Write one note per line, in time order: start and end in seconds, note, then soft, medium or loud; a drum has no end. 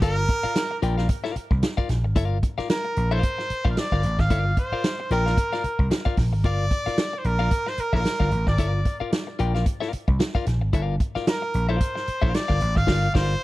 0.02 0.25 G1 loud
0.02 0.22 F4 medium
0.02 0.78 A#4 loud
0.02 0.17 A#4 medium
0.02 0.17 D5 medium
0.02 0.16 F5 loud
0.02 kick loud
0.02 closed hi-hat medium
0.18 muted clean electric guitar stroke soft
0.29 muted clean electric guitar stroke soft
0.29 kick loud
0.29 closed hi-hat medium
0.43 0.54 F4 medium
0.43 0.55 A#4 medium
0.43 0.55 D5 medium
0.43 0.55 F5 medium
0.43 muted slap bass stroke soft
0.55 muted clean electric guitar stroke soft
0.55 snare loud
0.55 closed hi-hat loud
0.71 muted clean electric guitar stroke soft
0.82 1.06 A#1 medium
0.82 0.97 F4 medium
0.82 0.97 A#4 medium
0.82 0.97 D5 medium
0.82 0.97 G5 medium
0.82 closed hi-hat medium
0.98 1.08 F4 soft
0.98 1.08 A#4 medium
0.98 1.08 D5 medium
0.98 1.08 F5 medium
0.98 snare soft
1.09 muted clean electric guitar stroke soft
1.09 kick medium
1.09 closed hi-hat medium
1.24 1.34 F4 medium
1.24 1.35 A#4 medium
1.24 1.35 D5 medium
1.24 1.36 F5 medium
1.24 snare soft
1.36 muted clean electric guitar stroke medium
1.36 muted slap bass stroke soft
1.36 closed hi-hat medium
1.51 1.61 C2 medium
1.51 muted clean electric guitar stroke soft
1.51 kick medium
1.63 muted clean electric guitar stroke soft
1.63 snare loud
1.63 closed hi-hat loud
1.77 1.89 F4 medium
1.77 1.89 A#4 medium
1.77 1.89 D5 medium
1.77 1.89 F5 medium
1.77 kick medium
1.89 2.04 A#1 medium
1.89 muted clean electric guitar stroke soft
1.89 snare soft
1.89 closed hi-hat medium
2.04 2.16 G#1 medium
2.04 muted clean electric guitar stroke medium
2.16 2.39 G1 loud
2.16 2.37 F4 medium
2.16 2.37 A#4 medium
2.16 2.37 D5 medium
2.16 2.37 F5 loud
2.16 kick loud
2.16 closed hi-hat medium
2.43 muted clean electric guitar stroke soft
2.43 kick medium
2.43 closed hi-hat medium
2.58 2.68 F4 medium
2.58 2.69 A#4 medium
2.58 2.69 D5 medium
2.58 2.69 F5 medium
2.58 muted slap bass stroke soft
2.58 snare soft
2.70 3.14 A#4 medium
2.70 snare loud
2.70 closed hi-hat loud
2.85 muted clean electric guitar stroke soft
2.96 3.20 A#1 medium
2.96 closed hi-hat medium
3.11 3.22 F4 medium
3.11 3.22 A#4 medium
3.11 3.70 C5 medium
3.11 3.22 D5 medium
3.11 3.23 F5 medium
3.23 muted clean electric guitar stroke soft
3.23 kick medium
3.23 closed hi-hat medium
3.38 muted clean electric guitar stroke soft
3.38 snare soft
3.50 muted slap bass stroke medium
3.50 closed hi-hat medium
3.65 3.75 A#1 medium
3.65 3.76 F4 medium
3.65 3.76 A#4 medium
3.65 3.77 D5 medium
3.65 3.77 F5 medium
3.65 kick medium
3.71 3.80 F5 medium
3.77 4.22 D5 loud
3.77 muted clean electric guitar stroke soft
3.77 snare loud
3.77 closed hi-hat medium
3.92 4.02 G1 medium
3.92 4.03 F4 medium
3.92 4.03 A#4 medium
3.92 4.03 D5 medium
3.92 4.04 F5 medium
3.92 kick medium
4.03 4.17 A1 medium
4.03 muted clean electric guitar stroke medium
4.03 closed hi-hat medium
4.18 4.30 G#1 medium
4.18 4.58 F5 medium
4.18 muted clean electric guitar stroke medium
4.18 kick medium
4.18 snare soft
4.30 4.53 G1 loud
4.30 4.51 F4 medium
4.30 4.45 A#4 medium
4.30 4.45 D5 loud
4.30 4.44 F5 medium
4.30 kick loud
4.30 closed hi-hat medium
4.45 muted clean electric guitar stroke medium
4.57 5.08 C5 medium
4.57 muted clean electric guitar stroke soft
4.57 kick medium
4.57 closed hi-hat medium
4.72 4.84 F4 medium
4.72 4.84 A#4 medium
4.72 4.84 D5 medium
4.72 4.84 F5 medium
4.72 muted slap bass stroke soft
4.84 snare loud
4.84 closed hi-hat loud
5.00 muted clean electric guitar stroke soft
5.10 5.34 A#1 medium
5.10 5.26 F4 medium
5.10 5.87 A#4 medium
5.10 5.26 A#4 medium
5.10 5.26 D5 medium
5.10 5.26 G5 medium
5.10 closed hi-hat medium
5.26 5.37 F4 medium
5.26 5.37 A#4 medium
5.26 5.37 D5 medium
5.26 5.38 F5 medium
5.26 snare soft
5.37 muted clean electric guitar stroke soft
5.37 kick medium
5.37 closed hi-hat medium
5.53 5.63 F4 medium
5.53 5.64 A#4 medium
5.53 5.64 D5 medium
5.53 5.64 F5 medium
5.53 snare soft
5.64 muted slap bass stroke medium
5.64 muted clean electric guitar stroke soft
5.64 closed hi-hat medium
5.79 5.89 C2 medium
5.79 muted clean electric guitar stroke medium
5.79 kick medium
5.91 muted clean electric guitar stroke soft
5.91 snare loud
5.91 closed hi-hat medium
6.05 6.16 F4 medium
6.05 6.17 A#4 medium
6.05 6.17 D5 medium
6.05 6.17 F5 medium
6.05 kick medium
6.17 6.32 A#1 medium
6.17 muted clean electric guitar stroke soft
6.17 kick loud
6.17 snare soft
6.17 open hi-hat medium
6.32 6.44 G#1 medium
6.32 muted clean electric guitar stroke soft
6.44 6.67 G1 loud
6.44 6.64 F4 medium
6.44 6.64 A#4 medium
6.44 7.20 D5 loud
6.44 6.65 D5 medium
6.44 6.65 F5 loud
6.44 kick loud
6.44 closed hi-hat medium
6.71 muted clean electric guitar stroke soft
6.71 kick medium
6.71 closed hi-hat medium
6.86 6.97 F4 medium
6.86 6.97 A#4 medium
6.86 6.97 D5 medium
6.86 6.98 F5 medium
6.86 muted slap bass stroke soft
6.86 snare soft
6.98 snare loud
6.98 closed hi-hat medium
7.13 muted clean electric guitar stroke soft
7.18 7.27 C5 medium
7.24 7.48 A#1 medium
7.24 7.70 A#4 loud
7.24 closed hi-hat medium
7.39 7.50 F4 medium
7.39 7.51 A#4 medium
7.39 7.51 D5 medium
7.39 7.51 F5 medium
7.51 muted clean electric guitar stroke soft
7.51 kick medium
7.51 closed hi-hat medium
7.67 7.81 C5 medium
7.67 muted clean electric guitar stroke medium
7.67 snare soft
7.78 7.94 A#4 medium
7.78 muted slap bass stroke soft
7.78 closed hi-hat medium
7.93 8.04 A#1 medium
7.93 8.04 F4 medium
7.93 8.04 A#4 medium
7.93 8.44 A#4 medium
7.93 8.04 D5 medium
7.93 8.05 F5 medium
7.93 kick medium
8.05 muted clean electric guitar stroke soft
8.05 snare loud
8.05 closed hi-hat medium
8.20 8.30 G1 medium
8.20 8.30 F4 medium
8.20 8.31 A#4 medium
8.20 8.31 D5 medium
8.20 8.31 F5 medium
8.20 kick medium
8.31 8.45 A1 medium
8.31 muted clean electric guitar stroke soft
8.31 closed hi-hat medium
8.47 8.59 G#1 medium
8.47 8.97 D5 medium
8.47 muted clean electric guitar stroke medium
8.47 kick medium
8.47 snare soft
8.58 8.82 G1 medium
8.58 8.79 F4 medium
8.58 8.73 A#4 loud
8.58 8.73 D5 loud
8.58 8.73 F5 loud
8.58 kick loud
8.58 closed hi-hat medium
8.74 muted clean electric guitar stroke soft
8.85 muted clean electric guitar stroke soft
8.85 kick medium
8.85 closed hi-hat medium
9.00 9.11 F4 medium
9.00 9.11 A#4 medium
9.00 9.11 D5 medium
9.00 9.12 F5 medium
9.00 muted slap bass stroke soft
9.12 muted clean electric guitar stroke soft
9.12 snare loud
9.12 closed hi-hat loud
9.27 muted clean electric guitar stroke soft
9.39 9.63 A#1 medium
9.39 9.55 F4 medium
9.39 9.54 A#4 medium
9.39 9.54 D5 medium
9.39 9.54 G5 medium
9.39 closed hi-hat medium
9.55 9.65 F4 medium
9.55 9.65 A#4 medium
9.55 9.66 D5 medium
9.55 9.66 F5 medium
9.55 snare soft
9.66 muted clean electric guitar stroke soft
9.66 kick medium
9.66 closed hi-hat medium
9.80 9.91 F4 medium
9.80 9.92 A#4 medium
9.80 9.92 D5 medium
9.80 9.92 F5 medium
9.80 snare soft
9.93 muted clean electric guitar stroke soft
9.93 muted slap bass stroke medium
9.93 closed hi-hat medium
10.08 10.18 C2 loud
10.08 muted clean electric guitar stroke medium
10.08 kick medium
10.19 muted clean electric guitar stroke soft
10.19 snare loud
10.19 closed hi-hat medium
10.35 10.46 F4 medium
10.35 10.46 A#4 medium
10.35 10.46 D5 medium
10.35 10.47 F5 medium
10.35 kick medium
10.46 10.62 A#1 medium
10.46 muted clean electric guitar stroke soft
10.46 snare soft
10.46 closed hi-hat medium
10.61 10.72 G#1 medium
10.61 muted clean electric guitar stroke soft
10.73 10.97 G1 medium
10.73 10.94 F4 medium
10.73 10.94 A#4 medium
10.73 10.95 D5 medium
10.73 10.95 F5 medium
10.73 kick loud
10.73 closed hi-hat medium
11.00 muted clean electric guitar stroke soft
11.00 kick loud
11.00 closed hi-hat medium
11.15 11.26 F4 medium
11.15 11.26 A#4 medium
11.15 11.27 D5 medium
11.15 11.27 F5 medium
11.15 muted slap bass stroke soft
11.15 snare soft
11.27 11.67 A#4 medium
11.27 muted clean electric guitar stroke soft
11.27 snare loud
11.27 closed hi-hat medium
11.42 muted clean electric guitar stroke medium
11.54 11.77 A#1 medium
11.54 closed hi-hat medium
11.69 11.79 F4 medium
11.69 11.79 A#4 medium
11.69 12.37 C5 medium
11.69 11.80 D5 medium
11.69 11.80 F5 medium
11.80 muted clean electric guitar stroke medium
11.80 kick medium
11.80 closed hi-hat medium
11.95 muted clean electric guitar stroke soft
11.95 snare soft
12.07 muted slap bass stroke soft
12.07 closed hi-hat medium
12.22 12.33 A#1 loud
12.22 12.32 F4 medium
12.22 12.33 A#4 medium
12.22 12.33 D5 medium
12.22 12.33 F5 medium
12.22 kick medium
12.34 12.78 D5 loud
12.34 snare loud
12.34 closed hi-hat loud
12.48 12.60 G1 medium
12.48 12.60 F4 medium
12.48 12.60 A#4 medium
12.48 12.60 D5 medium
12.48 12.61 F5 medium
12.48 kick medium
12.61 12.74 A1 medium
12.61 muted clean electric guitar stroke soft
12.61 closed hi-hat medium
12.75 12.88 G#1 medium
12.75 13.15 F5 loud
12.75 muted clean electric guitar stroke medium
12.75 kick medium
12.75 snare soft
12.87 13.07 G1 loud
12.87 13.06 F4 loud
12.87 13.07 A#4 loud
12.87 13.07 D5 loud
12.87 13.07 F5 loud
12.87 kick medium
12.87 snare loud
12.87 crash medium
13.14 13.34 G1 loud
13.14 13.34 F4 medium
13.14 13.34 A#4 medium
13.14 13.44 C5 loud
13.14 13.34 D5 loud
13.14 13.33 F5 loud
13.14 kick loud
13.14 snare loud